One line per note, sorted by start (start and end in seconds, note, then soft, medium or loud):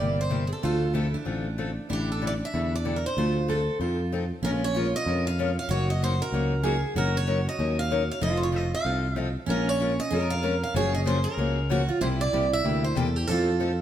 0.00 0.51 G1 medium
0.00 0.21 C3 medium
0.00 0.21 G3 medium
0.00 0.21 A#3 medium
0.00 0.21 E4 medium
0.00 0.60 G4 medium
0.00 0.21 G4 medium
0.00 0.18 D5 medium
0.21 0.48 C5 medium
0.30 0.42 C3 medium
0.30 0.43 G3 medium
0.30 0.43 A#3 medium
0.30 0.43 E4 medium
0.30 0.43 G4 medium
0.47 0.52 G#4 medium
0.53 0.64 A4 medium
0.62 1.15 D2 medium
0.62 0.83 D3 medium
0.62 0.84 A3 medium
0.62 0.84 C4 medium
0.62 0.84 F4 medium
0.62 0.84 A4 medium
0.62 1.12 A4 medium
0.93 1.06 D3 medium
0.93 1.05 A3 medium
0.93 1.06 C4 medium
0.93 1.15 E4 medium
0.93 1.06 F4 medium
0.93 1.06 A4 medium
1.14 1.89 D4 medium
1.25 1.77 A1 medium
1.25 1.46 D3 medium
1.25 1.46 A3 medium
1.25 1.47 C4 medium
1.25 1.47 F4 medium
1.25 1.47 A4 medium
1.58 1.69 D3 medium
1.58 1.69 A3 medium
1.58 1.70 C4 medium
1.58 1.69 F4 medium
1.58 1.70 A4 medium
1.89 2.41 A1 medium
1.89 2.10 D3 medium
1.89 2.10 G3 medium
1.89 2.10 D4 medium
1.89 2.10 E4 medium
1.89 2.11 G4 medium
1.89 2.10 A4 medium
2.12 2.23 A4 medium
2.22 2.33 D3 medium
2.22 2.33 G3 medium
2.22 2.33 D4 medium
2.22 2.33 E4 medium
2.22 2.33 A4 medium
2.27 2.32 D5 medium
2.45 2.75 E5 medium
2.53 3.04 E2 medium
2.53 2.74 D3 medium
2.53 2.74 G3 medium
2.53 2.74 D4 medium
2.53 2.74 E4 medium
2.53 2.74 A4 medium
2.75 2.96 D5 medium
2.85 2.96 D3 medium
2.85 2.96 G3 medium
2.85 2.96 D4 medium
2.85 2.96 E4 medium
2.85 2.96 A4 medium
2.96 3.04 A#4 medium
3.06 3.96 C5 medium
3.17 3.67 D2 medium
3.17 3.37 D3 medium
3.17 3.37 A3 medium
3.17 3.37 C4 medium
3.17 3.38 F4 medium
3.17 3.37 A4 medium
3.48 3.59 D3 medium
3.48 3.59 A3 medium
3.48 3.59 C4 medium
3.48 3.59 F4 medium
3.48 3.59 A4 medium
3.80 4.30 F2 medium
3.80 4.00 F3 medium
3.80 4.00 C4 medium
3.80 4.00 D#4 medium
3.80 4.27 F4 medium
3.80 4.00 A4 medium
4.12 4.23 F3 medium
4.12 4.23 C4 medium
4.12 4.23 D#4 medium
4.12 4.23 A4 medium
4.43 4.93 A#1 medium
4.43 4.64 F3 medium
4.43 4.64 G#3 medium
4.43 4.64 C#4 medium
4.43 4.64 F4 medium
4.43 4.50 A#4 medium
4.43 4.64 A#4 medium
4.64 4.93 C#5 medium
4.76 4.86 F3 medium
4.76 4.86 G#3 medium
4.76 4.87 C#4 medium
4.76 4.86 F4 medium
4.76 4.86 A#4 medium
4.96 5.24 D#5 loud
5.06 5.57 F2 medium
5.06 5.27 F3 medium
5.06 5.27 G#3 medium
5.06 5.27 C#4 medium
5.06 5.27 F4 medium
5.06 5.27 A#4 medium
5.27 5.55 F5 medium
5.39 5.49 F3 medium
5.39 5.49 G#3 medium
5.39 5.49 C#4 medium
5.39 5.50 F4 loud
5.39 5.50 A#4 medium
5.59 5.70 F5 medium
5.69 6.20 F#1 medium
5.69 5.90 F#3 medium
5.69 5.90 A#3 medium
5.69 5.90 D#4 medium
5.69 5.90 F#4 medium
5.69 5.88 C#5 medium
5.90 6.02 D#5 medium
6.02 6.12 F#3 medium
6.02 6.12 A#3 medium
6.02 6.13 D#4 medium
6.02 6.12 F#4 medium
6.02 6.20 C5 medium
6.22 6.80 A#4 medium
6.32 6.83 C#2 medium
6.32 6.53 F#3 medium
6.32 6.53 A#3 medium
6.32 6.53 D#4 medium
6.32 6.53 F#4 medium
6.63 6.75 F#3 medium
6.63 6.75 A#3 medium
6.63 6.75 D#4 medium
6.63 6.75 F#4 loud
6.63 6.96 G#4 medium
6.95 7.46 F#1 medium
6.95 7.16 F#3 medium
6.95 7.16 C#4 medium
6.95 7.16 D#4 medium
6.95 8.21 F#4 medium
6.95 7.16 A#4 medium
7.17 7.48 C#5 medium
7.27 7.38 F#3 medium
7.27 7.38 C#4 medium
7.27 7.38 D#4 medium
7.27 7.38 A#4 medium
7.49 7.79 D#5 medium
7.58 8.09 D#2 medium
7.58 7.78 F#3 medium
7.58 7.79 C#4 medium
7.58 7.79 D#4 medium
7.58 7.79 A#4 medium
7.79 8.08 F5 medium
7.90 8.01 F#3 medium
7.90 8.01 C#4 medium
7.90 8.02 D#4 medium
7.90 8.02 A#4 loud
8.11 8.22 F5 medium
8.21 8.73 F1 medium
8.21 8.41 F3 medium
8.21 8.42 C4 medium
8.21 8.42 D#4 medium
8.21 9.31 F4 medium
8.21 8.42 A4 medium
8.21 8.37 D#5 medium
8.37 8.41 C5 medium
8.43 8.48 C#5 medium
8.52 8.64 F3 medium
8.52 8.64 C4 medium
8.52 8.64 D#4 medium
8.52 8.64 A4 medium
8.56 8.74 D#5 medium
8.75 9.19 F5 medium
8.85 9.36 C2 medium
8.85 9.05 F3 medium
8.85 9.05 C4 medium
8.85 9.05 D#4 medium
8.85 9.05 A4 medium
9.16 9.27 F3 medium
9.16 9.27 C4 medium
9.16 9.27 D#4 medium
9.16 9.28 A4 medium
9.16 9.33 D#5 medium
9.48 9.99 A#1 medium
9.48 9.68 F3 medium
9.48 9.68 G#3 medium
9.48 9.69 C#4 medium
9.48 9.69 F4 medium
9.48 9.68 A#4 medium
9.48 9.69 A#4 medium
9.69 10.00 C#5 medium
9.80 9.91 F3 medium
9.80 9.91 G#3 medium
9.80 9.91 C#4 medium
9.80 9.91 F4 medium
9.80 9.91 A#4 medium
10.00 10.29 D#5 medium
10.12 10.63 F2 medium
10.12 10.32 F3 medium
10.12 10.32 G#3 medium
10.12 10.32 C#4 medium
10.12 10.32 F4 medium
10.12 10.32 A#4 medium
10.30 10.62 F5 medium
10.42 10.54 F3 medium
10.42 10.54 G#3 medium
10.42 10.54 C#4 medium
10.42 10.54 F4 medium
10.42 10.54 A#4 loud
10.63 10.75 F5 medium
10.74 11.25 F#1 medium
10.74 10.94 C#3 medium
10.74 10.95 F3 medium
10.74 10.94 A#3 medium
10.74 10.95 C#4 medium
10.74 10.95 F#4 medium
10.74 11.71 G#4 loud
10.74 10.93 C#5 medium
10.95 11.00 D#5 medium
11.06 11.17 C#3 medium
11.06 11.17 F3 medium
11.06 11.17 A#3 medium
11.06 11.17 C#4 medium
11.06 11.17 F#4 medium
11.06 11.26 C5 medium
11.24 11.84 A#4 medium
11.37 11.88 C#2 medium
11.37 11.58 C#3 medium
11.37 11.58 F3 medium
11.37 11.58 A#3 medium
11.37 11.58 C#4 medium
11.37 11.58 F#4 medium
11.69 11.80 C#3 medium
11.69 11.81 F3 medium
11.69 11.81 A#3 medium
11.69 11.81 C#4 medium
11.69 11.81 F#4 medium
11.89 12.00 F4 medium
12.01 12.27 C2 medium
12.01 12.22 C3 medium
12.01 12.21 G3 medium
12.01 12.21 A#3 medium
12.01 12.22 E4 medium
12.01 12.22 G4 medium
12.01 12.06 C5 medium
12.21 12.50 D5 medium
12.33 12.60 C2 medium
12.33 12.44 C3 medium
12.33 12.44 G3 medium
12.33 12.44 A#3 medium
12.33 12.44 E4 medium
12.33 12.44 G4 medium
12.53 12.84 E5 medium
12.64 12.91 D2 medium
12.64 12.84 C3 medium
12.64 12.84 G3 medium
12.64 12.84 A#3 medium
12.64 12.85 E4 medium
12.64 12.85 G4 medium
12.84 12.97 C5 medium
12.95 13.23 E2 medium
12.95 13.06 C3 medium
12.95 13.07 G3 medium
12.95 13.07 A#3 medium
12.95 13.07 E4 medium
12.95 13.07 G4 loud
12.95 13.16 A4 medium
13.16 13.27 G4 medium
13.27 13.79 F2 medium
13.27 13.48 F3 medium
13.27 13.48 C4 medium
13.27 13.48 D#4 medium
13.27 13.82 F4 medium
13.27 13.78 A4 medium
13.27 13.49 A4 medium
13.60 13.70 F3 medium
13.60 13.70 C4 medium
13.60 13.71 D#4 medium
13.60 13.71 A4 medium